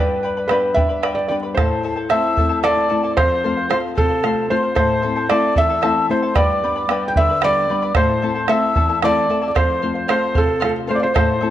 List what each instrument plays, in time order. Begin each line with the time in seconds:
Already playing: nylon-string guitar G2, charango G4 B4 G5 B5, felt piano B4
0.00 charango D5
0.23 charango B4 D5 G5 B5
0.37 charango B4 D5 B5
0.48 nylon-string guitar G3 B3 D4, charango G4 B4 D5 G5 B5, felt piano B4, bombo rim
0.74 nylon-string guitar G3 B3 D4, charango B4 D5 G5 B5, felt piano E5, bombo low
0.89 charango B4 D5 B5
1.03 charango G4 B4 D5 G5 B5, bombo rim
1.15 felt piano D5
1.28 nylon-string guitar G3 B3 D4, charango B4 D5 G5 B5, felt piano D5
1.43 charango B4 D5 B5
1.55 nylon-string guitar A2, charango E4 A4 C5 E5 A5, felt piano C5, bombo rim, bombo low
1.71 bombo rim
1.83 charango E4 A4 E5 A5
1.96 charango E4 A4 A5
2.09 nylon-string guitar A3 C4, charango E4 A4 C5 E5 A5, felt piano E5, quena E6, bombo rim
2.37 nylon-string guitar A3 C4 E4, charango E4 A4 E5 A5, bombo low
2.49 charango E4 A4 A5
2.63 charango E4 A4 C5 E5 A5, felt piano D5, quena D6, bombo rim
2.77 nylon-string guitar D5
2.89 nylon-string guitar A3 C4 E4 C5, charango E4 A4 E5 A5, bombo rim
3.03 charango E4 A4 A5
3.17 nylon-string guitar F2, charango A4 C5 F5, felt piano C5, quena C6, bombo rim, bombo low
3.44 nylon-string guitar A3 C4 F4, charango A4 C5 F5
3.57 charango C5 F5
3.69 nylon-string guitar A3 F4, charango A4 C5 F5, felt piano C5, quena C6, bombo rim
3.95 nylon-string guitar C3, charango A4 C5 F5, felt piano A4, quena A5, bombo low
4.09 charango C5 F5
4.23 nylon-string guitar A3 C4 F4, charango A4 C5 F5, bombo rim
4.50 nylon-string guitar A3 C4 F4, charango A4 C5 F5, felt piano C5, quena C6
4.62 charango C5 F5
4.75 nylon-string guitar A2, charango E4 A4 C5 E5 A5, felt piano C5, quena C6, bombo rim, bombo low
5.02 nylon-string guitar A3 C4 E4, charango E4 A4 E5 A5
5.16 charango E4 A4 A5
5.29 nylon-string guitar A3 C4 E4, charango E4 A4 C5 E5 A5, felt piano D5, quena D6, bombo rim
5.55 nylon-string guitar E2, charango E4 A4 E5 A5, felt piano E5, quena E6, bombo low
5.69 charango E4 A4 A5
5.82 nylon-string guitar A3 C4 E4, charango E4 A4 C5 E5 A5, bombo rim
6.09 nylon-string guitar A3 C4 E4, charango E4 A4 E5 A5, felt piano C5, quena C6
6.23 charango E4 A4 A5
6.35 nylon-string guitar G2, charango G4 B4 D5 G5 B5, felt piano D5, quena D6, bombo rim, bombo low
6.62 nylon-string guitar G3 B3 D4, charango B4 D5 G5 B5
6.76 charango B4 D5 B5
6.89 nylon-string guitar G3 B3 D4, charango G4 B4 D5 G5 B5, bombo rim
7.08 felt piano G5, quena G6
7.16 nylon-string guitar D3, charango B4 D5 G5 B5, felt piano E5, quena E6, bombo low
7.29 charango B4 D5 B5
7.41 nylon-string guitar G3 B3 D4, charango G4 B4 D5 G5 B5, felt piano D5, quena D6, bombo rim
7.69 nylon-string guitar G3 B3 D4, charango B4 D5 G5 B5
7.82 charango B4 D5 B5
7.95 nylon-string guitar A2, charango E4 A4 C5 E5 A5, felt piano C5, quena C6, bombo rim, bombo low
8.22 nylon-string guitar A3 C4 E4, charango E4 A4 E5 A5, bombo rim
8.35 charango E4 A4 A5
8.48 nylon-string guitar A3 C4 E4, charango E4 A4 C5 E5 A5, felt piano E5, quena E6, bombo rim
8.75 nylon-string guitar E2, charango E4 A4 E5 A5, bombo rim, bombo low
8.89 charango E4 A4 A5, bombo rim
9.02 nylon-string guitar A3 C4 E4, charango E4 A4 C5 E5 A5, felt piano D5, quena D6, bombo rim
9.16 bombo rim
9.29 nylon-string guitar A3 C4 E4, charango E4 A4 E5 A5
9.42 charango E4 A4 A5
9.47 felt piano D5, quena D6
9.55 nylon-string guitar F2, charango A4 C5 F5, felt piano C5, quena C6, bombo rim, bombo low
9.82 nylon-string guitar A3 C4 F4, charango A4 C5 F5
9.95 charango C5 F5
10.08 nylon-string guitar A3 C4 F4, charango A4 C5 F5, felt piano C5, quena C6, bombo rim
10.34 nylon-string guitar C3, charango A4 C5 F5, felt piano A4, quena A5, bombo low
10.47 charango C5 F5
10.60 nylon-string guitar A3 C4 F4, charango A4 C5 F5, quena A5, bombo rim
10.65 felt piano A4
10.87 nylon-string guitar A3 C4 F4, charango A4 C5 F5, felt piano C5, quena C6
10.94 felt piano D5, quena D6
11.00 charango C5 F5, felt piano C5
11.04 quena C6
11.14 nylon-string guitar A2, charango E4 A4 C5 E5 A5, felt piano C5, quena C6, bombo rim, bombo low
11.41 nylon-string guitar A3 C4 E4, charango E4 A4 E5 A5